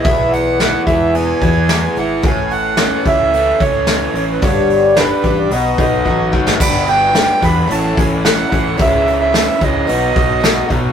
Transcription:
<<
  \new Staff \with { instrumentName = "Accordion" } { \time 4/4 \key a \lydian \tempo 4 = 110 e''8 fis''4 e''8 gis''4. fis''8 | gis''8 fis''4 e''4 cis''4~ cis''16 b'16 | cis''4 b'8. d''16 dis''4. r8 | b''8 g''4 b''8 a''8 gis''8 fis''4 |
e''8. e''8. dis''2 r8 | }
  \new Staff \with { instrumentName = "Twelve-string acoustic guitar" } { \time 4/4 \key a \lydian <e, b, e b e' gis'>4 <e b e' gis'>8 <e b e' gis'>4. <e b e' gis'>8 <e b e' gis'>8 | <a, e a cis' a'>4 <e a cis' a'>8 <a cis' a'>4. <e a cis' a'>8 <a cis' a'>8 | <g, d g b d' g'>4 <g b d' g'>8 <g b d' g'>8 <b, fis b dis' fis'>4 <fis b dis' fis'>8 <b dis' fis'>8 | <g b d' fis'>8 <b d' fis'>8 <g b d'>4 <a, fis a cis' e'>8 <a cis' e'>8 <fis a cis' e'>8 <a cis' e'>8 |
<cis e gis dis' e'>8 <gis dis' e'>8 <e gis e'>4 <b, fis b dis' fis'>8 <b dis' fis'>8 <fis b dis' fis'>8 <b dis' fis'>8 | }
  \new Staff \with { instrumentName = "Overdriven electric guitar" } { \time 4/4 \key a \lydian <e, e b e'>4 e'8 e8 b8 e'8 e8 e'8 | a,4 cis'8 e8 a8 cis'8 e8 cis'8 | g,4 d'8 g8 b,8 dis'8 fis8 dis'8 | <g, d g b d' g'>4. <g, d g b d' g'>8 <a, e a cis' e'>4. <a, e a cis' e'>8 |
<cis e gis cis' e'>4. <cis e gis cis' e'>8 <b, fis b dis' fis'>4. <b, fis b dis' fis'>8 | }
  \new Staff \with { instrumentName = "Fingered electric bass" } { \clef bass \time 4/4 \key a \lydian b,,4. e,,4 e,4 gis,,8 | a,,4. cis,4 cis,4 a,,8 | g,,4. a,,8 b,,8 b,,8 a,,8 gis,,8 | g,,4. e,8 a,,8 a,,4 a,,8 |
cis,4. cis,8 b,,8 b,,4 b,8 | }
  \new DrumStaff \with { instrumentName = "Drums" } \drummode { \time 4/4 <hho bd>8 hho8 <hho sn>8 <hho bd>8 hho8 <hho bd>8 <hho sn>8 hho8 | <hho bd>8 hho8 <hho sn>8 <hho bd>8 hho8 <hho bd>8 <hho sn>8 hho8 | <hho bd>8 hho8 <hho sn>8 <hho bd>8 hho8 <hho bd>8 bd8 bd16 sn16 | <cymc bd>8 hho8 <hho sn>8 <hho bd sn>8 hho8 <hho bd>8 <hho sn>8 <hho bd>8 |
<hho bd>8 hho8 <hho sn>8 <hho bd>8 hho8 <hho bd>8 <hho sn>8 <hho bd>8 | }
>>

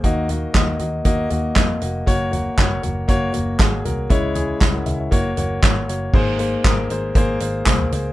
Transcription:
<<
  \new Staff \with { instrumentName = "Grand piano" } { \time 4/4 \key aes \mixolydian \tempo 4 = 118 << { r1 | r1 | r4 r16 <bes' ges''>16 <aes' fes''>16 <fes' des''>8 r4. r16 | r1 | } \\ { <bes ges' ees''>8 <bes ges' ees''>8 <bes ges' ees''>8 <bes ges' ees''>8 <bes ges' ees''>8 <bes ges' ees''>8 <bes ges' ees''>8 <bes ges' ees''>8 | <bes ges' des''>8 <bes ges' des''>8 <bes ges' des''>8 <bes ges' des''>8 <bes ges' des''>8 <bes ges'>8 <bes ges' aes'>8 <bes ges' bes'>8 | <aes fes' des''>8 <aes fes' aes'>8 r4 <bes ges' des''>8 <bes ges' des''>8 <bes ges' des''>8 <bes ges' des''>8 | <bes aes' c''>8 <bes aes' c''>8 <bes aes' bes'>8 <bes aes' c''>8 <bes aes' c''>8 <bes aes' c''>8 <bes aes' c''>8 <bes aes' c''>8 | } >> }
  \new Staff \with { instrumentName = "Grand piano" } { \clef bass \time 4/4 \key aes \mixolydian ees4. r2 r8 | r1 | des4. r2 r8 | aes,4. r2 r8 | }
  \new Staff \with { instrumentName = "Picked electric bass" } { \clef bass \time 4/4 \key aes \mixolydian ees,4 ees,8 ees,8 ees,8 ees,8 f,8 f,,8 | ges,,4 ges,,8 ges,,8 ges,,8 ges,,8 aes,,8 c,8 | des,4 des,8 des,8 ges,,8 ges,,8 aes,,8 ges,,8 | aes,,4 aes,,8 aes,,8 aes,,8 aes,,8 c,8 des,8 | }
  \new DrumStaff \with { instrumentName = "Drums" } \drummode { \time 4/4 <hh bd>8 <hh tomfh>8 <hc hh bd sn>8 <hh tomfh>8 <hh bd>8 <hh tomfh>8 <hc hh bd sn>8 hh8 | <hh bd>8 <hh tomfh>8 <hc hh bd sn>8 <hh tomfh>8 <hh bd>8 <hh tomfh>8 <hc hh bd sn>8 <hh tomfh>8 | <hh bd>8 <hh tomfh>8 <hc hh bd sn>8 <hh tomfh>8 <hh bd>8 <hh tomfh>8 <hc hh bd sn>8 hh8 | <cymc bd>8 hh8 <hc hh bd sn>8 hh8 <hh bd>8 hh8 <hc hh bd sn>16 tomfh16 hh8 | }
>>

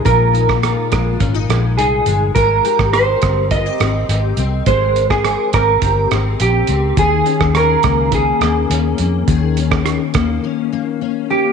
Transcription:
<<
  \new Staff \with { instrumentName = "Clean electric guitar" } { \time 4/4 \key aes \major \tempo 4 = 104 bes'2. aes'4 | bes'4 c''4 ees''2 | c''8. aes'8. bes'4 r8 g'4 | aes'4 bes'4 aes'2~ |
aes'2. r8 g'8 | }
  \new Staff \with { instrumentName = "Steel-string acoustic guitar" } { \time 4/4 \key aes \major <bes, aes ees' f'>8 ees'8 f'8 aes8 des'16 ees'16 aes8 ees'8 aes8 | <aes bes'>8 g'8 bes'8 c'8 f'16 g'16 c'8 g'8 c'8 | <aes bes'>4 bes'8 c'8 g'8 c'8 g'8 c'8 | <ees aes'>8 des'8 aes'8 bes8 des'8 bes8 des'8 bes8 |
<ees aes'>8 des'4 bes8 des'8 bes8 des'8 bes8 | }
  \new Staff \with { instrumentName = "Fingered electric bass" } { \clef bass \time 4/4 \key aes \major bes,,4~ bes,,16 r16 bes,,8 aes,,8 bes,,8 c,8 g,,8 | aes,,8 r16 aes,,8. g,,4 aes,,8 aes,,8 c,8 | aes,,4~ aes,,16 r16 aes,,8 g,,8 aes,,8 bes,,8 des,8 | ees,8 r16 ees,8. des,4 ees,8 ees,8 f,8 |
ees,4~ ees,16 r16 ees,8 r2 | }
  \new DrumStaff \with { instrumentName = "Drums" } \drummode { \time 4/4 <hh bd>8 hh16 <bd ss>16 <hh ss>8 <hh bd ss>8 <hh bd>8 <hh ss>8 hh8 hh8 | <hh bd>8 hh16 <bd ss>16 <hh ss>8 <hh bd ss>8 <hh bd>8 <hh ss>8 hh8 hh8 | <hh bd>8 hh16 <bd ss>16 <hh ss>8 <hh bd ss>8 <hh bd>8 <hh ss>8 hh8 hh8 | <hh bd>8 hh16 <bd ss>16 <hh ss>8 <hh bd ss>8 <hh bd>8 <hh ss>8 hh8 hh8 |
<hh bd>8 hh16 <bd ss>16 <hh ss>8 <hh bd ss>8 r4 r4 | }
>>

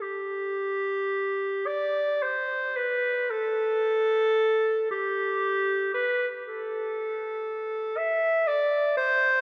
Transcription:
\new Staff \with { instrumentName = "Clarinet" } { \time 6/8 \key a \dorian \tempo 4. = 38 g'4. d''8 c''8 b'8 | a'4. g'4 b'8 | a'4. e''8 d''8 c''8 | }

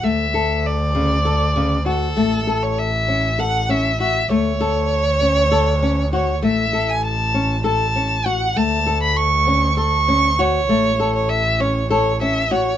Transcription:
<<
  \new Staff \with { instrumentName = "Violin" } { \time 7/8 \key a \major \tempo 4 = 99 e''4 d''2 a'8~ | a'8. cis''16 e''4 fis''8 e''8 e''8 | cis''2. cis''8 | e''8. gis''16 a''4 a''4 fis''8 |
a''8. b''16 cis'''4 cis'''4 cis''8~ | cis''8. cis''16 e''8 cis''8 cis''8 e''8 cis''8 | }
  \new Staff \with { instrumentName = "Nylon-string guitar" } { \time 7/8 \key a \major a8 a'4 cis8 a'8 cis8 fis'8 | a8 a'4 cis'8 a'8 cis'8 fis'8 | a8 a'4 cis'8 a'8 cis'8 fis'8 | a8 a'4 cis'8 a'8 cis'8 fis'8 |
a8 a'4 cis'8 a'8 cis'8 fis'8 | a8 a'4 cis'8 a'8 cis'8 fis'8 | }
  \new Staff \with { instrumentName = "Double bass" } { \clef bass \time 7/8 \key a \major d,2.~ d,8 | a,,2.~ a,,8 | d,2.~ d,8 | a,,2.~ a,,8 |
d,2.~ d,8 | a,,2.~ a,,8 | }
>>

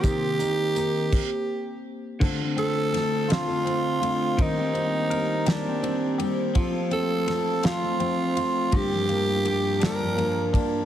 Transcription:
<<
  \new Staff \with { instrumentName = "Tenor saxophone" } { \time 6/8 \key c \dorian \tempo 4. = 55 g'2~ g'8 r8 | r8 a'4 f'4. | ees'4. d'4 r8 | r8 a'4 f'4. |
g'4. bes'4 r8 | }
  \new Staff \with { instrumentName = "Clean electric guitar" } { \time 6/8 \key c \dorian <ees ees' g' bes'>8 ees'8 bes'8 r4. | d8 c'8 a'8 f'8 c'8 f'8 | ees8 c'8 bes'8 g'8 c'8 g'8 | f8 c'8 a'8 f'8 c'8 f'8 |
g,8 bes8 g'8 d'8 bes8 d'8 | }
  \new Staff \with { instrumentName = "Glass harmonica" } { \time 6/8 \key c \dorian << { c''4. r4. | c''2.~ | c''2.~ | c''2. |
bes'2. | } \\ { g'4. r4. | f'2. | g'2. | f'2.~ |
f'2. | } >> }
  \new Staff \with { instrumentName = "Glass harmonica" } { \time 6/8 \key c \dorian <bes c'>4. r4. | <a d'>2. | <bes c'>2. | <a c'>2. |
<g d'>2. | }
  \new Staff \with { instrumentName = "Steel-string acoustic guitar" } { \time 6/8 \key c \dorian <c ees bes ees' g' bes'>8 <bes ees' g' bes'>8 <bes ees' g' bes'>8 r4. | <d a c' f' a'>16 <c' f' a'>16 <a c' f' a'>8 <a c' f' a'>8 <d a c' f' a'>16 <c' f' a'>16 <a c' f' a'>8 <a c' f' a'>8 | <ees g c' g' bes'>16 <c' g' bes'>16 <g c' g' bes'>8 <g c' g' bes'>8 <ees g c' g' bes'>16 <c' g' bes'>16 <g c' g' bes'>8 <g c' g' bes'>8 | <f c' f' a'>16 <c' f' a'>16 <f c' f' a'>8 <f c' f' a'>8 <f c' f' a'>16 <c' f' a'>16 <f c' f' a'>8 <f c' f' a'>8 |
<g, d f bes d' g'>16 <f bes d' g'>16 <f bes d' g'>8 <f bes d' g'>8 <g, d f bes d' g'>16 <f bes d' g'>16 <f bes d' g'>8 <f bes d' g'>8 | }
  \new DrumStaff \with { instrumentName = "Drums" } \drummode { \time 6/8 <hh bd>8 hh8 hh8 <cymc bd>4. | <cymc bd>8 cymr8 <cymr sn>8 <cymr sn>8 cymr8 cymr8 | <bd cymr>8 cymr8 cymr8 <cymr sn>8 cymr8 cymr8 | <bd cymr>8 cymr8 <cymr sn>8 <cymr sn>8 cymr8 cymr8 |
<bd cymr>8 cymr8 cymr8 <cymr sn>8 cymr8 <bd cymr>8 | }
>>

